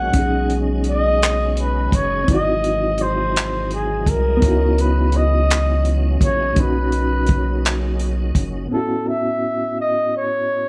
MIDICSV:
0, 0, Header, 1, 6, 480
1, 0, Start_track
1, 0, Key_signature, 5, "major"
1, 0, Tempo, 714286
1, 93, Time_signature, 6, 3, 24, 8
1, 7182, End_track
2, 0, Start_track
2, 0, Title_t, "Flugelhorn"
2, 0, Program_c, 0, 56
2, 0, Note_on_c, 0, 78, 107
2, 401, Note_off_c, 0, 78, 0
2, 591, Note_on_c, 0, 75, 115
2, 1035, Note_off_c, 0, 75, 0
2, 1070, Note_on_c, 0, 71, 87
2, 1308, Note_on_c, 0, 73, 91
2, 1318, Note_off_c, 0, 71, 0
2, 1541, Note_off_c, 0, 73, 0
2, 1549, Note_on_c, 0, 75, 104
2, 2026, Note_on_c, 0, 72, 101
2, 2036, Note_off_c, 0, 75, 0
2, 2500, Note_off_c, 0, 72, 0
2, 2510, Note_on_c, 0, 68, 88
2, 2748, Note_on_c, 0, 70, 96
2, 2758, Note_off_c, 0, 68, 0
2, 3228, Note_on_c, 0, 71, 83
2, 3238, Note_off_c, 0, 70, 0
2, 3471, Note_on_c, 0, 75, 96
2, 3481, Note_off_c, 0, 71, 0
2, 4000, Note_off_c, 0, 75, 0
2, 4196, Note_on_c, 0, 73, 93
2, 4434, Note_on_c, 0, 71, 103
2, 4444, Note_off_c, 0, 73, 0
2, 5383, Note_off_c, 0, 71, 0
2, 5865, Note_on_c, 0, 69, 82
2, 6104, Note_on_c, 0, 76, 93
2, 6114, Note_off_c, 0, 69, 0
2, 6579, Note_off_c, 0, 76, 0
2, 6587, Note_on_c, 0, 75, 94
2, 6804, Note_off_c, 0, 75, 0
2, 6831, Note_on_c, 0, 73, 88
2, 7182, Note_off_c, 0, 73, 0
2, 7182, End_track
3, 0, Start_track
3, 0, Title_t, "Reed electric piano"
3, 0, Program_c, 1, 4
3, 0, Control_c, 1, 64, 127
3, 0, Note_on_c, 1, 63, 61
3, 0, Note_on_c, 1, 66, 77
3, 60, Note_on_c, 1, 46, 67
3, 72, Note_off_c, 1, 63, 0
3, 84, Note_off_c, 1, 66, 0
3, 84, Note_on_c, 1, 61, 63
3, 102, Control_c, 1, 64, 0
3, 109, Note_on_c, 1, 63, 63
3, 130, Note_on_c, 1, 68, 74
3, 228, Control_c, 1, 64, 127
3, 1490, Note_off_c, 1, 46, 0
3, 1502, Note_off_c, 1, 61, 0
3, 1503, Note_on_c, 1, 60, 72
3, 1514, Note_off_c, 1, 63, 0
3, 1525, Note_off_c, 1, 68, 0
3, 1527, Note_on_c, 1, 63, 61
3, 1542, Control_c, 1, 64, 0
3, 1551, Note_on_c, 1, 64, 61
3, 1574, Note_on_c, 1, 66, 78
3, 1672, Control_c, 1, 64, 127
3, 2931, Note_off_c, 1, 60, 0
3, 2935, Note_on_c, 1, 59, 72
3, 2943, Note_off_c, 1, 63, 0
3, 2955, Note_off_c, 1, 64, 0
3, 2961, Note_on_c, 1, 63, 62
3, 2967, Note_off_c, 1, 66, 0
3, 2982, Control_c, 1, 64, 0
3, 2985, Note_on_c, 1, 64, 60
3, 3007, Note_on_c, 1, 66, 74
3, 3113, Control_c, 1, 64, 127
3, 4367, Note_off_c, 1, 59, 0
3, 4380, Note_off_c, 1, 63, 0
3, 4382, Note_on_c, 1, 46, 68
3, 4392, Note_off_c, 1, 64, 0
3, 4403, Note_off_c, 1, 66, 0
3, 4404, Note_on_c, 1, 61, 62
3, 4421, Control_c, 1, 64, 0
3, 4428, Note_on_c, 1, 63, 62
3, 4452, Note_on_c, 1, 66, 75
3, 4553, Control_c, 1, 64, 127
3, 5811, Note_off_c, 1, 46, 0
3, 5819, Note_on_c, 1, 45, 55
3, 5822, Note_off_c, 1, 61, 0
3, 5834, Note_off_c, 1, 63, 0
3, 5836, Note_on_c, 1, 59, 55
3, 5846, Note_off_c, 1, 66, 0
3, 5855, Note_on_c, 1, 61, 52
3, 5862, Control_c, 1, 64, 0
3, 5872, Note_on_c, 1, 64, 56
3, 5889, Note_on_c, 1, 66, 65
3, 5968, Control_c, 1, 64, 127
3, 7182, Note_off_c, 1, 45, 0
3, 7182, Note_off_c, 1, 59, 0
3, 7182, Note_off_c, 1, 61, 0
3, 7182, Note_off_c, 1, 64, 0
3, 7182, Note_off_c, 1, 66, 0
3, 7182, End_track
4, 0, Start_track
4, 0, Title_t, "Tonewheel organ"
4, 0, Program_c, 2, 16
4, 0, Note_on_c, 2, 51, 67
4, 0, Note_on_c, 2, 54, 64
4, 0, Note_on_c, 2, 56, 59
4, 0, Note_on_c, 2, 61, 64
4, 0, Note_on_c, 2, 66, 74
4, 79, Note_off_c, 2, 66, 0
4, 80, Note_off_c, 2, 51, 0
4, 92, Note_on_c, 2, 49, 68
4, 94, Note_on_c, 2, 75, 79
4, 1507, Note_off_c, 2, 61, 0
4, 1509, Note_off_c, 2, 54, 0
4, 1518, Note_off_c, 2, 49, 0
4, 1534, Note_on_c, 2, 48, 61
4, 1537, Note_on_c, 2, 52, 63
4, 1539, Note_on_c, 2, 54, 57
4, 2947, Note_off_c, 2, 75, 0
4, 2948, Note_off_c, 2, 56, 0
4, 2959, Note_off_c, 2, 48, 0
4, 2962, Note_off_c, 2, 54, 0
4, 2976, Note_on_c, 2, 49, 69
4, 2976, Note_on_c, 2, 61, 62
4, 2976, Note_on_c, 2, 75, 80
4, 2978, Note_on_c, 2, 54, 61
4, 4388, Note_off_c, 2, 52, 0
4, 4413, Note_on_c, 2, 46, 60
4, 5828, Note_off_c, 2, 49, 0
4, 5828, Note_off_c, 2, 61, 0
4, 5828, Note_off_c, 2, 75, 0
4, 5829, Note_off_c, 2, 54, 0
4, 5839, Note_off_c, 2, 46, 0
4, 7182, End_track
5, 0, Start_track
5, 0, Title_t, "Analog synth bass"
5, 0, Program_c, 3, 38
5, 0, Note_on_c, 3, 34, 84
5, 71, Note_off_c, 3, 34, 0
5, 96, Note_on_c, 3, 35, 102
5, 1268, Note_off_c, 3, 35, 0
5, 1297, Note_on_c, 3, 30, 91
5, 1511, Note_off_c, 3, 30, 0
5, 1538, Note_on_c, 3, 32, 109
5, 2734, Note_on_c, 3, 36, 89
5, 2744, Note_off_c, 3, 32, 0
5, 2950, Note_off_c, 3, 36, 0
5, 2975, Note_on_c, 3, 37, 112
5, 4147, Note_off_c, 3, 37, 0
5, 4174, Note_on_c, 3, 34, 96
5, 4390, Note_off_c, 3, 34, 0
5, 4415, Note_on_c, 3, 35, 112
5, 5587, Note_off_c, 3, 35, 0
5, 5614, Note_on_c, 3, 30, 86
5, 5830, Note_off_c, 3, 30, 0
5, 7182, End_track
6, 0, Start_track
6, 0, Title_t, "Drums"
6, 91, Note_on_c, 9, 42, 68
6, 93, Note_on_c, 9, 36, 90
6, 158, Note_off_c, 9, 42, 0
6, 160, Note_off_c, 9, 36, 0
6, 335, Note_on_c, 9, 42, 48
6, 402, Note_off_c, 9, 42, 0
6, 564, Note_on_c, 9, 42, 48
6, 631, Note_off_c, 9, 42, 0
6, 823, Note_on_c, 9, 42, 72
6, 833, Note_on_c, 9, 39, 103
6, 890, Note_off_c, 9, 42, 0
6, 900, Note_off_c, 9, 39, 0
6, 1055, Note_on_c, 9, 42, 51
6, 1122, Note_off_c, 9, 42, 0
6, 1293, Note_on_c, 9, 36, 84
6, 1297, Note_on_c, 9, 42, 61
6, 1360, Note_off_c, 9, 36, 0
6, 1364, Note_off_c, 9, 42, 0
6, 1533, Note_on_c, 9, 36, 86
6, 1533, Note_on_c, 9, 42, 68
6, 1600, Note_off_c, 9, 42, 0
6, 1601, Note_off_c, 9, 36, 0
6, 1774, Note_on_c, 9, 42, 49
6, 1841, Note_off_c, 9, 42, 0
6, 2002, Note_on_c, 9, 42, 48
6, 2069, Note_off_c, 9, 42, 0
6, 2260, Note_on_c, 9, 42, 80
6, 2270, Note_on_c, 9, 39, 98
6, 2328, Note_off_c, 9, 42, 0
6, 2337, Note_off_c, 9, 39, 0
6, 2491, Note_on_c, 9, 42, 45
6, 2558, Note_off_c, 9, 42, 0
6, 2731, Note_on_c, 9, 36, 82
6, 2736, Note_on_c, 9, 42, 61
6, 2799, Note_off_c, 9, 36, 0
6, 2803, Note_off_c, 9, 42, 0
6, 2971, Note_on_c, 9, 42, 71
6, 2972, Note_on_c, 9, 36, 90
6, 3038, Note_off_c, 9, 42, 0
6, 3039, Note_off_c, 9, 36, 0
6, 3215, Note_on_c, 9, 42, 48
6, 3282, Note_off_c, 9, 42, 0
6, 3443, Note_on_c, 9, 42, 49
6, 3510, Note_off_c, 9, 42, 0
6, 3699, Note_on_c, 9, 42, 74
6, 3709, Note_on_c, 9, 39, 106
6, 3767, Note_off_c, 9, 42, 0
6, 3776, Note_off_c, 9, 39, 0
6, 3931, Note_on_c, 9, 42, 48
6, 3998, Note_off_c, 9, 42, 0
6, 4172, Note_on_c, 9, 36, 81
6, 4176, Note_on_c, 9, 42, 60
6, 4239, Note_off_c, 9, 36, 0
6, 4243, Note_off_c, 9, 42, 0
6, 4410, Note_on_c, 9, 42, 69
6, 4412, Note_on_c, 9, 36, 86
6, 4477, Note_off_c, 9, 42, 0
6, 4479, Note_off_c, 9, 36, 0
6, 4652, Note_on_c, 9, 42, 47
6, 4719, Note_off_c, 9, 42, 0
6, 4882, Note_on_c, 9, 42, 46
6, 4899, Note_on_c, 9, 36, 93
6, 4949, Note_off_c, 9, 42, 0
6, 4966, Note_off_c, 9, 36, 0
6, 5142, Note_on_c, 9, 42, 73
6, 5152, Note_on_c, 9, 39, 101
6, 5209, Note_off_c, 9, 42, 0
6, 5219, Note_off_c, 9, 39, 0
6, 5373, Note_on_c, 9, 42, 51
6, 5440, Note_off_c, 9, 42, 0
6, 5611, Note_on_c, 9, 36, 80
6, 5614, Note_on_c, 9, 42, 61
6, 5678, Note_off_c, 9, 36, 0
6, 5682, Note_off_c, 9, 42, 0
6, 7182, End_track
0, 0, End_of_file